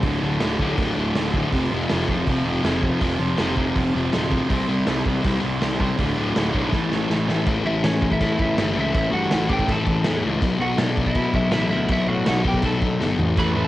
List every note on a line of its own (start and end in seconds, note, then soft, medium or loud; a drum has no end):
0.03 0.17 D1 loud
0.03 0.20 D2 loud
0.03 0.21 A2 medium
0.03 0.22 D3 medium
0.03 kick loud
0.03 open hi-hat medium
0.22 0.37 D1 medium
0.22 0.40 D2 medium
0.22 0.41 A2 medium
0.22 0.41 D3 medium
0.40 0.55 D1 medium
0.40 0.59 D2 medium
0.40 0.58 A2 medium
0.40 0.60 D3 medium
0.40 snare loud
0.40 open hi-hat medium
0.59 0.73 D1 medium
0.59 0.76 D2 medium
0.59 0.77 A2 loud
0.59 0.77 D3 loud
0.59 kick medium
0.77 0.92 D1 medium
0.77 0.94 D2 medium
0.77 0.94 A2 medium
0.77 0.94 D3 medium
0.77 kick loud
0.77 open hi-hat medium
0.95 1.11 D1 medium
0.95 1.13 D2 medium
0.95 1.14 A2 medium
0.95 1.15 D3 loud
1.14 1.43 D1 medium
1.14 1.32 D2 medium
1.14 1.32 A2 medium
1.14 1.33 D3 medium
1.14 snare loud
1.14 open hi-hat medium
1.33 1.51 D2 medium
1.33 1.51 A2 medium
1.33 1.51 D3 medium
1.33 kick medium
1.52 1.66 F1 medium
1.52 1.71 F2 medium
1.52 1.71 C3 medium
1.52 1.71 F3 loud
1.52 kick loud
1.52 open hi-hat medium
1.71 1.85 F1 medium
1.71 1.89 F2 medium
1.71 1.89 C3 medium
1.71 1.90 F3 medium
1.89 2.04 F1 medium
1.89 2.07 F2 medium
1.89 2.07 C3 medium
1.89 2.09 F3 loud
1.89 snare loud
1.89 open hi-hat medium
2.08 2.22 F1 medium
2.08 2.26 F2 medium
2.08 2.27 C3 medium
2.08 2.28 F3 medium
2.08 kick medium
2.27 2.41 F1 medium
2.27 2.44 F2 medium
2.27 2.45 C3 medium
2.27 2.45 F3 medium
2.27 kick loud
2.27 open hi-hat medium
2.45 2.59 F1 medium
2.45 2.62 F2 medium
2.45 2.62 C3 medium
2.45 2.63 F3 loud
2.63 2.91 F1 medium
2.63 2.80 F2 medium
2.63 2.81 C3 medium
2.63 2.81 F3 medium
2.63 snare loud
2.63 open hi-hat medium
2.82 3.00 F2 medium
2.82 3.00 C3 medium
2.82 3.01 F3 medium
2.82 kick medium
3.01 3.15 F1 medium
3.01 3.18 F2 medium
3.01 3.19 C3 medium
3.01 3.19 F3 loud
3.01 kick loud
3.01 open hi-hat medium
3.19 3.34 F1 medium
3.19 3.37 F2 medium
3.19 3.37 C3 medium
3.19 3.38 F3 medium
3.38 3.52 F1 medium
3.38 3.54 F2 medium
3.38 3.55 C3 medium
3.38 3.55 F3 loud
3.38 snare loud
3.38 open hi-hat medium
3.55 3.71 F1 medium
3.55 3.75 F2 medium
3.55 3.75 C3 loud
3.55 3.75 F3 loud
3.55 kick medium
3.76 3.89 F1 medium
3.76 3.94 F2 medium
3.76 3.94 C3 medium
3.76 3.94 F3 medium
3.76 kick loud
3.76 open hi-hat medium
3.95 4.08 F1 medium
3.95 4.12 F2 medium
3.95 4.12 C3 loud
3.95 4.13 F3 medium
4.13 4.40 D1 medium
4.13 4.30 F2 medium
4.13 4.30 C3 medium
4.13 4.31 F3 medium
4.13 snare loud
4.13 open hi-hat medium
4.31 4.48 F2 medium
4.31 4.48 C3 medium
4.31 4.49 F3 medium
4.31 kick medium
4.49 4.64 C2 loud
4.49 4.67 C3 medium
4.49 4.67 G3 loud
4.49 4.68 C4 medium
4.49 kick loud
4.49 open hi-hat medium
4.68 4.82 C2 medium
4.68 4.85 C3 medium
4.68 4.85 G3 medium
4.68 4.86 C4 medium
4.86 5.01 C2 medium
4.86 5.04 C3 medium
4.86 5.04 G3 medium
4.86 5.04 C4 medium
4.86 snare loud
4.86 open hi-hat medium
5.05 5.20 C2 medium
5.05 5.21 C3 medium
5.05 5.22 G3 loud
5.05 5.22 C4 loud
5.05 kick medium
5.22 5.38 C2 medium
5.22 5.39 C3 medium
5.22 5.39 G3 medium
5.22 5.40 C4 medium
5.22 kick loud
5.22 open hi-hat medium
5.40 5.57 C2 medium
5.40 5.58 C3 medium
5.40 5.59 G3 medium
5.40 5.60 C4 loud
5.60 5.89 C2 medium
5.60 5.77 C3 medium
5.60 5.78 G3 medium
5.60 5.78 C4 medium
5.60 snare loud
5.60 open hi-hat medium
5.79 5.96 C3 medium
5.79 5.97 G3 medium
5.79 5.97 C4 medium
5.79 kick medium
5.97 6.12 D1 loud
5.97 6.14 D2 medium
5.97 6.14 A2 loud
5.97 6.15 D3 loud
5.97 kick loud
5.97 open hi-hat medium
6.15 6.32 D1 medium
6.15 6.32 D2 medium
6.15 6.32 A2 medium
6.15 6.34 D3 loud
6.33 6.50 D2 medium
6.33 6.51 A2 medium
6.33 6.51 D3 medium
6.33 snare loud
6.33 open hi-hat medium
6.37 6.50 D1 medium
6.51 6.68 B1 medium
6.51 6.70 D2 medium
6.51 6.70 A2 loud
6.51 6.70 D3 loud
6.51 kick medium
6.72 6.87 A1 medium
6.72 6.89 A2 medium
6.72 6.89 E3 medium
6.72 6.90 A3 loud
6.72 kick loud
6.72 snare medium
6.90 7.05 A1 medium
6.90 7.08 A2 medium
6.90 7.08 E3 medium
6.90 7.09 A3 loud
6.90 snare medium
7.09 7.37 A1 medium
7.09 7.27 A2 medium
7.09 7.28 E3 medium
7.09 7.28 A3 medium
7.09 snare medium
7.28 7.46 A2 medium
7.28 7.46 E3 medium
7.28 7.46 A3 medium
7.28 snare medium
7.47 7.63 A1 loud
7.47 7.65 A2 medium
7.47 7.66 E3 loud
7.47 7.67 A3 loud
7.47 kick loud
7.47 crash medium
7.66 7.82 A1 medium
7.66 7.84 A2 medium
7.66 7.84 E3 medium
7.66 7.85 A3 loud
7.66 7.83 E4 medium
7.66 7.83 E5 medium
7.83 8.17 A1 medium
7.83 8.01 A2 medium
7.83 8.02 E3 medium
7.83 8.02 A3 loud
7.83 8.09 C#4 medium
7.83 8.12 C#5 medium
7.83 snare loud
7.83 crash medium
8.02 8.20 A2 medium
8.02 8.20 E3 medium
8.02 8.21 A3 medium
8.02 kick medium
8.11 8.38 E4 medium
8.11 8.41 E5 medium
8.11 kick medium
8.21 8.37 A2 loud
8.21 8.38 E3 loud
8.21 8.38 A3 loud
8.21 kick loud
8.21 crash medium
8.39 8.56 A1 medium
8.39 8.55 A2 medium
8.39 8.56 E3 loud
8.39 8.57 A3 medium
8.39 8.73 E4 medium
8.39 8.79 E5 medium
8.39 kick loud
8.56 8.74 G1 medium
8.56 8.74 A2 medium
8.56 8.74 E3 medium
8.56 8.75 A3 medium
8.56 snare loud
8.56 crash medium
8.75 8.92 C#2 medium
8.75 8.92 A2 medium
8.75 8.92 E3 medium
8.75 8.93 A3 loud
8.75 8.94 E4 medium
8.80 8.97 E5 medium
8.93 9.11 A1 loud
8.93 9.10 A2 medium
8.93 9.10 E3 loud
8.93 9.10 A3 loud
8.93 9.12 E4 medium
8.93 kick loud
8.93 crash medium
8.98 9.13 E5 loud
9.11 9.30 G2 medium
9.11 9.28 A2 medium
9.11 9.29 E3 medium
9.11 9.29 A3 medium
9.11 9.46 F#4 medium
9.11 9.51 F#5 loud
9.30 9.48 A1 medium
9.30 9.47 A2 medium
9.30 9.47 E3 loud
9.30 9.48 A3 medium
9.30 snare loud
9.30 crash medium
9.48 9.66 A1 medium
9.48 9.66 A2 medium
9.48 9.67 E3 medium
9.48 9.67 A3 loud
9.48 9.67 G4 medium
9.48 kick medium
9.53 9.70 G5 loud
9.59 kick medium
9.67 9.85 A1 loud
9.67 9.85 A2 loud
9.67 9.85 E3 loud
9.67 9.85 A3 loud
9.67 10.20 A4 medium
9.67 kick loud
9.67 crash medium
9.72 10.22 A5 loud
9.86 10.04 A1 loud
9.86 10.03 A2 medium
9.86 10.03 E3 loud
9.86 10.04 A3 loud
9.86 kick medium
10.04 10.21 E2 medium
10.04 10.22 A2 medium
10.04 10.23 E3 loud
10.04 10.23 A3 loud
10.04 snare loud
10.04 crash medium
10.24 10.40 C#2 medium
10.24 10.41 A2 loud
10.24 10.41 E3 loud
10.24 10.42 A3 loud
10.41 10.59 B1 loud
10.41 10.60 B2 loud
10.41 10.60 F#3 loud
10.41 10.61 B3 loud
10.41 kick loud
10.41 crash medium
10.59 10.76 B1 medium
10.59 10.77 B2 medium
10.59 10.77 F#3 medium
10.59 10.78 B3 medium
10.59 10.78 F#4 medium
10.59 10.80 F#5 medium
10.77 11.11 B1 medium
10.77 10.96 B2 medium
10.77 10.96 F#3 loud
10.77 10.97 B3 loud
10.77 11.05 D4 medium
10.77 11.04 D5 medium
10.77 snare loud
10.77 crash medium
10.97 11.14 B2 medium
10.97 11.14 F#3 medium
10.97 11.15 B3 loud
10.97 kick medium
11.06 11.33 E4 medium
11.06 11.34 E5 medium
11.06 kick medium
11.15 11.32 B2 loud
11.15 11.33 F#3 loud
11.15 11.33 B3 loud
11.15 kick loud
11.15 crash medium
11.33 11.51 B1 medium
11.33 11.49 B2 loud
11.33 11.51 F#3 loud
11.33 11.50 B3 loud
11.33 11.52 E4 medium
11.33 11.52 E5 medium
11.33 kick medium
11.51 11.70 A1 loud
11.51 11.69 B2 medium
11.51 11.70 F#3 loud
11.51 11.70 B3 loud
11.51 11.70 E4 medium
11.51 11.70 E5 medium
11.51 snare loud
11.51 crash medium
11.70 11.88 D2 loud
11.70 11.86 B2 loud
11.70 11.88 F#3 medium
11.70 11.88 B3 loud
11.70 11.89 E4 medium
11.70 11.88 E5 medium
11.88 12.06 B1 loud
11.88 12.06 B2 medium
11.88 12.07 F#3 loud
11.88 12.08 B3 loud
11.88 kick loud
11.88 crash medium
11.92 12.08 E4 medium
11.92 12.08 E5 loud
12.08 12.25 A2 medium
12.08 12.24 B2 medium
12.08 12.24 F#3 medium
12.08 12.25 B3 loud
12.08 12.25 F#4 medium
12.08 12.27 F#5 medium
12.26 12.44 B1 medium
12.26 12.43 B2 loud
12.26 12.43 F#3 loud
12.26 12.44 B3 loud
12.26 12.44 F#4 medium
12.26 12.45 F#5 medium
12.26 snare loud
12.26 crash medium
12.44 12.62 B1 medium
12.44 12.62 B2 medium
12.44 12.62 F#3 medium
12.44 12.63 B3 medium
12.44 kick medium
12.48 12.65 G4 medium
12.48 12.66 G5 medium
12.54 kick medium
12.62 12.80 B1 medium
12.62 12.81 B2 medium
12.62 12.82 F#3 loud
12.62 12.81 B3 loud
12.62 13.16 A4 medium
12.62 13.16 A5 medium
12.62 kick medium
12.62 crash medium
12.82 12.99 B1 medium
12.82 13.00 B2 medium
12.82 13.01 F#3 loud
12.82 13.01 B3 loud
12.82 kick medium
13.01 13.18 G1 medium
13.01 13.18 B2 medium
13.01 13.18 F#3 medium
13.01 13.19 B3 medium
13.01 snare medium
13.19 13.36 A1 medium
13.19 13.37 A2 loud
13.19 13.37 E3 loud
13.19 13.38 A3 loud
13.19 floor tom medium
13.37 13.54 A1 loud
13.37 13.55 A2 loud
13.37 13.55 E3 loud
13.37 13.56 A3 loud
13.37 13.65 B4 medium
13.37 13.67 B5 loud
13.37 kick loud
13.37 crash medium
13.56 13.68 A1 medium
13.56 13.68 A2 medium
13.56 13.68 E3 medium
13.56 13.68 A3 loud